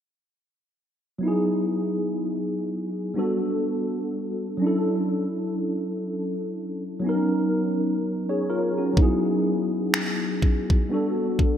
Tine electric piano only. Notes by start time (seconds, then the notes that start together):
1.18 F#3 B3
1.23 D#4 E4
1.28 G#4
3.14 G3 B3 D4 F#4
3.19 A4
4.57 F#3 C#4
4.62 D4 E4
4.67 A4
7.00 F#3 B3
7.04 C#4 D#4
7.09 A#4
8.29 G#4 C#5
8.50 F4 A#4
8.78 C#4 F#4
8.93 F#3 B3
8.98 D#4 E4
9.03 G#4
10.89 G3 B3 D4 F#4
10.94 A4